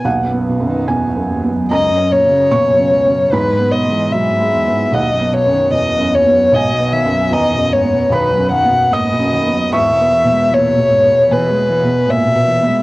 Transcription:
<<
  \new Staff \with { instrumentName = "Violin" } { \time 4/4 \key b \major \tempo 4 = 75 r2 dis''8 cis''4. | b'8 dis''8 e''4 dis''8 cis''8 dis''8 cis''8 | dis''8 e''8 dis''8 cis''8 b'8 fis''8 dis''4 | e''4 cis''4 b'4 e''4 | }
  \new Staff \with { instrumentName = "Ambient pad" } { \time 4/4 \key b \major << { <dis' b'>2 <fis' cis''>2 | <e' gis''>2 <fis' fis''>2~ | <fis' fis''>1 | <gis' e''>1 | } \\ { fis1 | b1 | b1 | b1 | } >> }
  \new Staff \with { instrumentName = "Felt piano" } { \time 4/4 \key b \major fis''4 gis''4 ais''4 cis'''4 | b''2 fis''4. r8 | gis''4 ais''4 b''4 dis'''4 | cis'''2 gis''4. r8 | }
  \new Staff \with { instrumentName = "Felt piano" } { \clef bass \time 4/4 \key b \major \tuplet 3/2 { b,,8 b8 fis,8 e,8 fis,8 b8 fis,8 cis'8 cis8 b,8 cis8 cis'8 } | \tuplet 3/2 { gis,8 b8 gis8 fis8 gis8 b8 b,,8 b8 fis,8 e,8 fis,8 b8 } | \tuplet 3/2 { b,,8 b8 fis,8 e,8 fis,8 b8 b,,8 fis,8 b8 ais8 fis,8 b8 } | \tuplet 3/2 { e,8 b8 b,8 ais,8 b,8 b8 b,8 b8 b,8 ais,8 b,8 b8 } | }
  \new Staff \with { instrumentName = "Cello" } { \clef bass \time 4/4 \key b \major dis,16 fis,16 b,16 dis16 b,16 fis,16 dis,16 fis,16 cis,16 fis,16 ais,16 cis16 ais,16 fis,16 cis,16 fis,16 | e,16 gis,16 b,16 e16 b,16 gis,16 e,16 gis,16 dis,16 fis,16 b,16 dis16 b,16 fis,16 dis,16 fis,16 | gis,16 b,16 dis16 fis16 dis16 b,16 gis,16 b,16 dis16 fis16 dis16 b,16 gis,16 b,16 dis16 fis16 | gis,16 b,16 e16 gis16 e16 b,16 gis,16 b,16 e16 gis16 e16 b,16 gis,16 b,16 e16 gis16 | }
>>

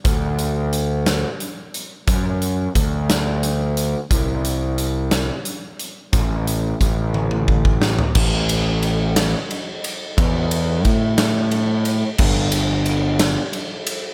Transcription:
<<
  \new Staff \with { instrumentName = "Picked electric bass" } { \clef bass \time 6/8 \key d \major \tempo 4. = 59 d,2 r4 | fis,4 d,2 | c,2 r4 | a,,4 a,,2 |
a,,2 r4 | e,4 a,2 | g,,2 r4 | }
  \new DrumStaff \with { instrumentName = "Drums" } \drummode { \time 6/8 <hh bd>8 hh8 hh8 <hh sn>8 hh8 hh8 | <hh bd>8 hh8 <hh bd>8 <hh sn>8 hh8 hh8 | <hh bd>8 hh8 hh8 <hh sn>8 hh8 hh8 | <hh bd>8 hh8 <hh bd>8 tommh16 tommh16 bd16 bd16 sn16 tomfh16 |
<cymc bd>8 cymr8 cymr8 <cymr sn>8 cymr8 cymr8 | <bd cymr>8 cymr8 <bd cymr>8 <cymr sn>8 cymr8 cymr8 | <cymc bd>8 cymr8 cymr8 <cymr sn>8 cymr8 cymr8 | }
>>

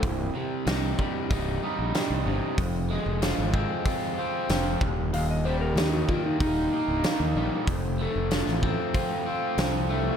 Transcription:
<<
  \new Staff \with { instrumentName = "Electric slide guitar" } { \time 4/4 \key f \dorian \tempo 4 = 94 r1 | r1 | f''16 ees''16 c''16 bes'16 g'16 fis'16 f'16 ees'16 ees'2~ | ees'4 r2. | }
  \new Staff \with { instrumentName = "Overdriven electric guitar" } { \clef bass \time 4/4 \key f \dorian c,8 c8 ees'8 g8 ees'8 g8 g,8 c8 | f,8 aes8 f'8 c'8 f'8 c'8 f8 ees,8 | ees,8 g8 ees'8 bes8 ees'8 bes8 ees8 g8 | f,8 a8 f'8 c'8 f'8 c'8 f8 a8 | }
  \new Staff \with { instrumentName = "Overdriven electric guitar" } { \clef bass \time 4/4 \key f \dorian c,8 c8 g,8 c8 g8 ees'8 g8 c8 | f,8 aes8 f8 aes8 c'8 f'8 c'8 ees,8 | ees,8 g8 ees8 g8 bes8 ees'8 bes8 g8 | f,8 a8 f8 a8 c'8 f'8 c'8 a8 | }
  \new Staff \with { instrumentName = "Fingered electric bass" } { \clef bass \time 4/4 \key f \dorian c,,8 r8 c,8 r8 c,,8 r16 bes,,16 r16 c,16 g,,16 r16 | f,,8. f,,8 aes,,8 r4 r16 f,,8 ees,,8~ | ees,,4 ees,8 r8 ees,,8 r16 c,,16 r16 ees,16 bes,,16 r16 | f,,8. f,,8 a,,8 r4 r16 c,4 | }
  \new DrumStaff \with { instrumentName = "Drums" } \drummode { \time 4/4 <hho bd>4 <hho sn>8 bd8 <hho bd>4 <hho sn>4 | <hho bd>4 <hho sn>8 bd8 <hho bd>4 <hho sn>8 bd8 | hho4 <hho sn>8 bd8 <hho bd>4 <hho sn>4 | <hho bd>4 <hho sn>16 sn16 bd8 <hho bd>4 <hho sn>4 | }
>>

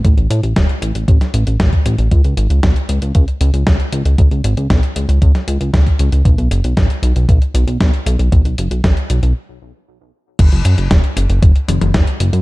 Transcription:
<<
  \new Staff \with { instrumentName = "Analog synth bass" } { \clef bass \time 4/4 \key b \dorian \tempo 4 = 116 a,,16 a,,16 a,16 a,,16 e,,16 r16 a,,16 a,,16 a,,16 r16 a,,16 a,,16 a,,16 r16 a,,16 a,,16 | cis,16 cis,16 gis,,16 cis,16 b,,16 r16 cis,16 cis,16 cis,16 r16 cis,16 cis,16 cis,16 r16 cis,16 cis,16 | cis,16 cis,16 gis,,16 cis,16 b,,16 r16 cis,16 cis,16 cis,16 r16 cis,16 cis,16 cis,16 r16 cis,16 cis,16 | b,,16 b,,16 fis,,16 b,,16 a,,16 r16 b,,16 b,,16 b,,16 r16 b,,16 b,,16 b,,16 r16 b,,16 b,,16 |
b,,16 b,,16 fis,,16 b,,16 a,,16 r16 b,,16 b,,16 r2 | fis,,16 fis,,16 fis,16 fis,,16 e,,16 r16 fis,,16 fis,,16 fis,,16 r16 fis,,16 fis,,16 fis,,16 r16 fis,,16 fis,16 | }
  \new DrumStaff \with { instrumentName = "Drums" } \drummode { \time 4/4 <hh bd>16 hh16 hh16 hh16 <hh bd sn>16 hh16 hh16 hh16 <hh bd>16 <hh sn>16 hh16 hh16 <hh bd sn>16 <hh bd>16 hh16 hh16 | <hh bd>16 hh16 hh16 hh16 <hh bd sn>16 hh16 hh16 hh16 <hh bd>16 hh16 hh16 hh16 <hh bd sn>16 hh16 hh16 hh16 | <hh bd>16 hh16 hh16 hh16 <hh bd sn>16 hh16 hh16 hh16 <hh bd>16 <hh sn>16 hh16 hh16 <hh bd sn>16 <hh bd>16 hh16 hh16 | <hh bd>16 hh16 hh16 hh16 <hh bd sn>16 hh16 hh16 hh16 <hh bd>16 hh16 hh16 hh16 <hh bd sn>16 hh16 hh16 hh16 |
<hh bd>16 hh16 hh16 hh16 <hh bd sn>16 hh16 hh16 hh16 r4 r4 | <cymc hh bd>16 hh16 hh16 hh16 <hh bd sn>16 hh16 hh16 hh16 <hh bd>16 hh16 <hh tommh>16 <hh tommh>16 <hh bd sn>16 hh16 hh16 hh16 | }
>>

